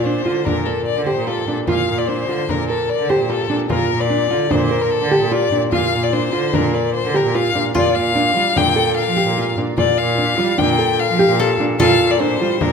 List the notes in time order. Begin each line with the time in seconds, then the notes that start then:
Already playing: A#2
0.05 D4 C5
0.25 D3 F4
0.45 A#2 D4 A#4, frame drum
0.65 A4 A#4
0.86 D5
0.96 D3
1.06 G4 C5, frame drum
1.17 A#2
1.27 F4 A4
1.47 A#2 D4, frame drum
1.67 A#2 F4 F5, frame drum
1.88 A#2
1.99 D5
2.08 D4 C5
2.29 D3 F4
2.49 A#2 D4 A#4, frame drum
2.69 A4 A#4
2.89 D5
2.99 D3
3.09 G4 C5, frame drum
3.20 A#2
3.29 F4 A4
3.50 A#2 D4, frame drum
3.70 A#2 F4 A#4, frame drum
3.90 A#2
4.01 D5
4.10 D4
4.30 D3 F4
4.50 A#2 D4 C5, frame drum
4.71 A#4
4.81 A#4
4.90 A4
5.01 D3
5.11 G4, frame drum
5.21 A#2
5.31 F4 D5
5.52 A#2 D4, frame drum
5.72 A#2 F4 F5, frame drum
5.92 A#2, frame drum
6.03 D5
6.13 D4 C5, frame drum
6.33 D3 F4
6.53 A#2 D4 A#4, frame drum
6.74 A#4 D5
6.94 C5
7.05 D3
7.14 G4 A#4, frame drum
7.24 A#2
7.35 F4 F5
7.55 A#2 D4, frame drum
7.74 A#2 F4 D5, frame drum
7.95 A#2 F5
8.15 D4
8.35 G3 F4
8.55 A#2 D4 G5, frame drum
8.76 A4
8.97 F5
9.07 F3
9.16 G4, frame drum
9.27 A#2
9.38 F4
9.57 A#2 D4, frame drum
9.77 A#2 F4 D5, frame drum
9.97 A#2 F5
10.18 D4
10.38 G3 F4
10.58 A#2 D4 G5, frame drum
10.79 A4
10.99 F5
11.09 F3
11.19 G4, frame drum
11.29 A#2
11.39 F4 A4
11.59 A#2 D4, frame drum
11.79 A#2 F4 A4 F5, frame drum
12.00 A#2
12.11 D5
12.20 D4 C5
12.41 G3 F4
12.61 A#2 D4 A#4, frame drum